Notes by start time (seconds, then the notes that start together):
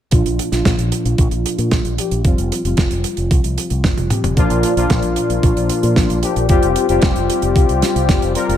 0.11 A#1 A#2 F3 A#3 D4 F4, kick, closed hi-hat
0.26 A#1, closed hi-hat
0.39 closed hi-hat
0.52 A#1 A#2 F3 A#3 D4 F4, snare, closed hi-hat
0.65 A#1, kick, snare, closed hi-hat
0.79 A#1, closed hi-hat
0.92 closed hi-hat
1.05 A#1, closed hi-hat
1.18 A#1, kick, closed hi-hat
1.31 A#1, closed hi-hat
1.46 closed hi-hat
1.58 A#2, closed hi-hat
1.71 A#1, kick, snare, closed hi-hat
1.85 A#1, closed hi-hat
1.98 F3 A#3 D4 G4, closed hi-hat
2.11 A#1, closed hi-hat
2.24 F1 F3 G3 C4 F4, kick, closed hi-hat
2.38 F1, closed hi-hat
2.52 closed hi-hat
2.64 F1 F3 G3 C4 F4, closed hi-hat
2.77 F1, kick, snare, closed hi-hat
2.91 F1, closed hi-hat
3.04 closed hi-hat
3.17 F1, closed hi-hat
3.31 C2, kick, closed hi-hat
3.44 C2, closed hi-hat
3.58 closed hi-hat
3.70 C2, closed hi-hat
3.84 F1, kick, snare, closed hi-hat, high tom
3.97 F1, closed hi-hat, high tom
4.10 A#2 F3 G3 C4 G4, closed hi-hat, mid tom
4.24 F1, closed hi-hat, mid tom
4.37 A#1 A#2 F3 A#3 D4 F4, kick, closed hi-hat
4.50 A#1, closed hi-hat
4.63 closed hi-hat
4.77 A#1 A#2 F3 A#3 D4 F4, closed hi-hat
4.90 A#1, kick, snare, closed hi-hat
5.02 A#1, closed hi-hat
5.16 closed hi-hat
5.30 A#1, closed hi-hat
5.43 A#1, kick, closed hi-hat
5.57 A#1, closed hi-hat
5.69 closed hi-hat
5.83 A#2, closed hi-hat
5.96 A#1, kick, snare, closed hi-hat
6.10 A#1, closed hi-hat
6.23 F3 A#3 D4 G4, closed hi-hat
6.36 A#1, closed hi-hat
6.49 F1 G3 C4 F4 G4, kick, closed hi-hat
6.63 F1, closed hi-hat
6.76 closed hi-hat
6.89 F1 G3 C4 F4 G4, closed hi-hat
7.02 F1, kick, snare, closed hi-hat
7.16 F1, closed hi-hat
7.30 closed hi-hat
7.42 F1, closed hi-hat
7.56 C2, kick, closed hi-hat
7.69 C2, closed hi-hat
7.82 snare, closed hi-hat
7.95 C2, closed hi-hat
8.09 F1, kick, snare, closed hi-hat
8.22 F1, closed hi-hat
8.35 G3 C4 F4 A#4, closed hi-hat
8.49 F1, closed hi-hat